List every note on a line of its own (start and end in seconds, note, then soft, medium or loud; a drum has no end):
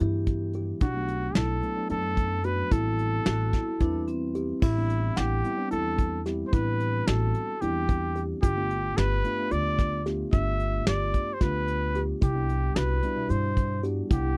0.00 0.71 G2 medium
0.00 0.81 E3 medium
0.00 0.81 G3 medium
0.00 0.82 B3 medium
0.00 0.82 E4 medium
0.00 0.33 E4 medium
0.00 0.64 G4 medium
0.00 closed hi-hat medium
0.27 kick medium
0.27 closed hi-hat medium
0.53 0.71 G4 medium
0.53 closed hi-hat soft
0.81 1.28 B1 medium
0.81 1.15 D4 medium
0.81 1.37 F#4 medium
0.81 kick loud
0.81 closed hi-hat medium
0.94 1.57 F#3 medium
0.94 1.57 A3 medium
0.94 1.58 B3 medium
0.94 1.58 D4 medium
1.08 closed hi-hat medium
1.35 1.59 B1 medium
1.35 1.69 E4 medium
1.35 1.90 A4 medium
1.35 snare medium
1.35 closed hi-hat medium
1.62 1.74 F#3 medium
1.62 1.75 A3 medium
1.62 1.75 B3 medium
1.62 1.76 D4 medium
1.62 closed hi-hat soft
1.76 2.39 F#3 medium
1.76 2.39 A3 medium
1.76 2.39 B3 medium
1.76 2.39 D4 medium
1.89 2.61 F#2 medium
1.89 2.23 D4 medium
1.89 2.46 A4 medium
1.89 closed hi-hat medium
2.17 kick medium
2.17 closed hi-hat medium
2.43 2.69 F#3 medium
2.43 2.69 A3 medium
2.43 2.69 B3 medium
2.43 2.70 D4 medium
2.43 2.61 F#4 medium
2.43 2.73 B4 medium
2.43 closed hi-hat medium
2.71 3.19 A1 medium
2.71 3.72 G3 medium
2.71 3.72 B3 medium
2.71 3.72 C4 medium
2.71 3.04 E4 medium
2.71 3.72 E4 medium
2.71 4.08 A4 medium
2.71 kick loud
2.71 closed hi-hat medium
2.99 closed hi-hat medium
3.26 3.50 A1 medium
3.26 3.54 F#4 medium
3.26 3.59 F#4 medium
3.26 snare medium
3.26 closed hi-hat medium
3.53 3.78 E4 medium
3.53 kick medium
3.53 snare soft
3.53 closed hi-hat medium
3.80 4.51 E2 medium
3.80 4.62 G3 medium
3.80 4.62 C4 medium
3.80 4.06 D4 medium
3.80 4.13 E4 medium
3.80 4.63 E4 medium
3.80 4.62 B4 medium
3.80 kick medium
3.80 closed hi-hat medium
4.08 4.58 C4 medium
4.08 closed hi-hat medium
4.35 4.51 G4 medium
4.35 closed hi-hat medium
4.62 5.09 A1 medium
4.62 4.95 E4 medium
4.62 5.19 E4 medium
4.62 kick loud
4.62 crash medium
4.76 5.38 G3 medium
4.76 5.39 B3 medium
4.76 5.39 C4 medium
4.76 5.39 D4 medium
4.90 closed hi-hat medium
5.16 5.41 A1 medium
5.16 5.70 G4 medium
5.16 5.49 F#5 medium
5.16 snare medium
5.16 closed hi-hat medium
5.44 5.56 G3 medium
5.44 5.57 B3 medium
5.44 5.57 C4 medium
5.44 5.57 E4 medium
5.44 closed hi-hat medium
5.58 6.20 G3 medium
5.58 6.20 B3 medium
5.58 6.21 C4 medium
5.58 6.21 D4 medium
5.71 6.42 E2 medium
5.71 6.04 E4 medium
5.71 6.21 A4 medium
5.71 closed hi-hat medium
5.98 kick medium
5.98 closed hi-hat medium
6.26 6.51 G3 medium
6.26 6.51 B3 medium
6.26 6.51 C4 medium
6.26 6.51 E4 medium
6.26 6.42 G4 medium
6.26 snare soft
6.26 closed hi-hat medium
6.46 6.54 C5 medium
6.53 7.00 A1 medium
6.53 7.53 G3 medium
6.53 7.53 B3 medium
6.53 7.54 C4 medium
6.53 7.54 D4 medium
6.53 6.86 E4 medium
6.53 7.08 B4 medium
6.53 kick loud
6.53 closed hi-hat medium
6.80 closed hi-hat medium
7.07 7.31 A1 medium
7.07 7.40 F#4 medium
7.07 7.62 A4 medium
7.07 snare loud
7.07 closed hi-hat medium
7.34 closed hi-hat medium
7.61 8.32 E2 medium
7.61 8.43 G3 medium
7.61 8.43 B3 medium
7.61 8.43 C4 medium
7.61 8.43 D4 medium
7.61 7.95 E4 medium
7.61 8.22 G4 medium
7.61 closed hi-hat medium
7.89 kick medium
7.89 closed hi-hat medium
8.16 8.32 G4 medium
8.16 closed hi-hat medium
8.42 8.90 G1 medium
8.42 8.75 F4 medium
8.42 8.98 G4 medium
8.42 kick medium
8.42 closed hi-hat medium
8.56 9.19 A3 medium
8.56 9.19 B3 medium
8.56 9.19 D4 medium
8.56 9.20 F4 medium
8.71 closed hi-hat medium
8.97 9.21 G1 medium
8.97 9.30 G4 medium
8.97 9.53 B4 medium
8.97 snare medium
8.97 closed hi-hat medium
9.24 9.37 A3 medium
9.24 9.37 B3 medium
9.24 9.37 D4 medium
9.24 9.37 F4 medium
9.24 closed hi-hat medium
9.38 10.00 A3 medium
9.38 10.01 B3 medium
9.38 10.01 D4 medium
9.38 10.01 F4 medium
9.51 10.22 D2 medium
9.51 9.84 F4 medium
9.51 10.06 D5 medium
9.51 closed hi-hat medium
9.79 kick medium
9.79 snare soft
9.79 closed hi-hat medium
10.06 10.31 A3 medium
10.06 10.31 B3 medium
10.06 10.31 D4 medium
10.06 10.31 F4 medium
10.06 10.22 G4 medium
10.06 snare soft
10.06 closed hi-hat medium
10.32 10.80 G1 medium
10.32 11.32 A3 medium
10.32 11.32 B3 medium
10.32 11.33 D4 medium
10.32 10.65 F4 medium
10.32 11.33 F4 medium
10.32 10.83 E5 medium
10.32 kick loud
10.32 closed hi-hat medium
10.60 closed hi-hat medium
10.87 11.11 G1 medium
10.87 11.19 G4 medium
10.87 11.35 D5 medium
10.87 snare medium
10.87 closed hi-hat medium
11.14 kick medium
11.14 closed hi-hat medium
11.33 11.43 C5 medium
11.41 12.11 D2 medium
11.41 12.22 A3 medium
11.41 12.22 B3 medium
11.41 12.22 D4 medium
11.41 11.74 F4 medium
11.41 12.23 F4 medium
11.41 12.02 B4 medium
11.41 kick medium
11.41 snare soft
11.41 closed hi-hat medium
11.68 closed hi-hat medium
11.95 12.11 G4 medium
11.95 closed hi-hat medium
12.21 12.69 C2 medium
12.21 12.54 E4 medium
12.21 12.78 G4 medium
12.21 kick loud
12.21 closed hi-hat medium
12.35 12.97 G3 medium
12.35 12.97 B3 medium
12.35 12.98 D4 medium
12.35 12.98 E4 medium
12.49 closed hi-hat medium
12.76 12.99 C2 medium
12.76 13.09 F#4 medium
12.76 13.32 B4 medium
12.76 snare medium
12.76 closed hi-hat medium
13.03 13.14 G3 medium
13.03 13.16 B3 medium
13.03 13.16 D4 medium
13.03 13.16 E4 medium
13.03 closed hi-hat medium
13.16 13.78 B2 medium
13.16 13.78 G3 medium
13.16 13.79 D4 medium
13.16 13.79 E4 medium
13.29 14.00 G2 medium
13.29 13.62 E4 medium
13.29 13.84 C5 medium
13.29 closed hi-hat medium
13.57 kick medium
13.57 closed hi-hat medium
13.83 14.08 G3 medium
13.83 14.08 B3 medium
13.83 14.08 D4 medium
13.83 14.09 F#4 medium
13.83 14.00 G4 medium
13.83 closed hi-hat medium
14.10 14.37 C2 medium
14.10 14.37 G3 medium
14.10 14.37 B3 medium
14.10 14.37 D4 medium
14.10 14.37 E4 medium
14.10 14.37 G4 medium
14.10 14.37 F#5 medium
14.10 kick loud
14.10 closed hi-hat medium